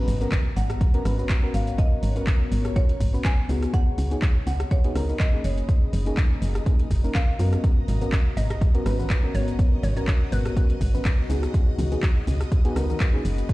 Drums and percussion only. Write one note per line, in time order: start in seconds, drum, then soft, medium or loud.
0.08 open hi-hat loud
0.08 shaker medium
0.21 closed hi-hat medium
0.21 shaker soft
0.32 kick loud
0.32 clap loud
0.32 closed hi-hat medium
0.32 shaker soft
0.56 open hi-hat medium
0.56 shaker medium
0.70 cross-stick medium
0.70 closed hi-hat medium
0.70 shaker soft
0.81 kick loud
0.81 closed hi-hat medium
0.81 shaker soft
0.94 closed hi-hat medium
1.05 cross-stick medium
1.05 open hi-hat loud
1.05 shaker medium
1.19 shaker soft
1.29 kick loud
1.29 clap loud
1.29 closed hi-hat medium
1.29 shaker soft
1.54 open hi-hat medium
1.54 shaker medium
1.67 closed hi-hat medium
1.67 shaker soft
1.78 kick loud
1.78 closed hi-hat medium
1.78 shaker soft
2.03 open hi-hat loud
2.03 shaker medium
2.16 closed hi-hat medium
2.16 shaker soft
2.27 kick loud
2.27 clap loud
2.27 closed hi-hat medium
2.27 shaker soft
2.52 open hi-hat loud
2.52 shaker medium
2.65 cross-stick medium
2.65 closed hi-hat medium
2.65 shaker soft
2.76 kick loud
2.76 closed hi-hat medium
2.76 shaker soft
2.89 closed hi-hat medium
3.00 kick medium
3.00 open hi-hat loud
3.00 shaker medium
3.14 shaker soft
3.25 kick loud
3.25 clap loud
3.25 closed hi-hat medium
3.25 shaker soft
3.49 open hi-hat loud
3.49 shaker medium
3.62 cross-stick medium
3.62 closed hi-hat medium
3.62 shaker soft
3.73 kick loud
3.73 closed hi-hat medium
3.73 shaker soft
3.98 open hi-hat loud
3.98 shaker medium
4.11 closed hi-hat medium
4.11 shaker soft
4.22 kick loud
4.22 clap loud
4.22 closed hi-hat medium
4.22 shaker soft
4.47 open hi-hat loud
4.47 shaker medium
4.60 cross-stick medium
4.60 closed hi-hat medium
4.60 shaker soft
4.71 kick loud
4.71 closed hi-hat medium
4.71 shaker soft
4.84 closed hi-hat medium
4.96 cross-stick medium
4.96 open hi-hat loud
4.96 shaker medium
5.09 shaker soft
5.20 kick loud
5.20 clap loud
5.20 closed hi-hat medium
5.20 shaker soft
5.44 open hi-hat loud
5.44 shaker medium
5.58 closed hi-hat medium
5.58 shaker soft
5.69 kick loud
5.69 closed hi-hat medium
5.69 shaker soft
5.93 open hi-hat loud
5.93 shaker medium
6.06 closed hi-hat medium
6.06 shaker soft
6.17 kick loud
6.17 clap loud
6.17 closed hi-hat medium
6.17 shaker soft
6.42 open hi-hat loud
6.42 shaker medium
6.55 cross-stick medium
6.55 closed hi-hat medium
6.55 shaker soft
6.66 kick loud
6.66 closed hi-hat medium
6.66 shaker soft
6.79 closed hi-hat medium
6.91 kick medium
6.91 open hi-hat loud
6.91 shaker medium
7.04 shaker soft
7.15 kick loud
7.15 clap loud
7.15 closed hi-hat medium
7.15 shaker soft
7.39 open hi-hat loud
7.39 shaker medium
7.53 cross-stick medium
7.53 closed hi-hat medium
7.53 shaker soft
7.64 kick loud
7.64 closed hi-hat medium
7.64 shaker soft
7.88 open hi-hat loud
7.88 high conga loud
7.88 low conga medium
7.88 shaker medium
8.01 closed hi-hat medium
8.01 shaker soft
8.12 kick loud
8.12 clap loud
8.12 closed hi-hat medium
8.12 shaker soft
8.36 open hi-hat medium
8.36 muted conga soft
8.36 low conga medium
8.36 shaker medium
8.50 cross-stick medium
8.50 closed hi-hat medium
8.50 shaker soft
8.61 kick loud
8.61 closed hi-hat medium
8.61 shaker soft
8.75 closed hi-hat soft
8.86 cross-stick medium
8.86 open hi-hat loud
8.86 shaker medium
8.99 high conga medium
8.99 shaker soft
9.10 kick loud
9.10 clap loud
9.10 closed hi-hat medium
9.10 shaker soft
9.35 open hi-hat medium
9.35 shaker medium
9.48 closed hi-hat medium
9.48 shaker soft
9.59 kick loud
9.59 closed hi-hat medium
9.59 shaker soft
9.83 open hi-hat loud
9.83 high conga medium
9.83 low conga medium
9.83 shaker medium
9.97 closed hi-hat medium
9.97 shaker soft
10.07 kick loud
10.07 clap loud
10.07 closed hi-hat medium
10.07 shaker soft
10.32 open hi-hat medium
10.32 muted conga soft
10.32 low conga medium
10.32 shaker medium
10.45 cross-stick medium
10.45 closed hi-hat medium
10.45 shaker soft
10.56 kick loud
10.56 closed hi-hat medium
10.56 shaker soft
10.69 closed hi-hat medium
10.69 muted conga medium
10.81 kick medium
10.81 open hi-hat loud
10.81 shaker medium
10.94 muted conga medium
10.94 high conga medium
10.94 shaker soft
11.05 kick loud
11.05 clap loud
11.05 closed hi-hat medium
11.05 shaker soft
11.30 open hi-hat medium
11.30 shaker medium
11.43 cross-stick medium
11.43 closed hi-hat medium
11.43 shaker soft
11.54 kick loud
11.54 closed hi-hat medium
11.54 shaker soft
11.78 open hi-hat loud
11.78 high conga medium
11.78 low conga medium
11.78 shaker medium
11.92 closed hi-hat medium
11.92 shaker soft
12.03 kick loud
12.03 clap loud
12.03 closed hi-hat medium
12.03 shaker soft
12.27 open hi-hat medium
12.27 muted conga soft
12.27 low conga medium
12.27 shaker medium
12.41 cross-stick medium
12.41 closed hi-hat medium
12.41 shaker soft
12.52 kick loud
12.52 closed hi-hat medium
12.52 shaker soft
12.65 closed hi-hat medium
12.76 cross-stick medium
12.76 open hi-hat loud
12.76 shaker medium
12.89 high conga medium
12.89 shaker soft
13.00 kick loud
13.00 clap loud
13.00 closed hi-hat medium
13.00 shaker soft
13.25 open hi-hat medium
13.25 shaker medium
13.38 closed hi-hat medium
13.38 shaker soft
13.49 kick loud
13.49 closed hi-hat medium
13.49 shaker soft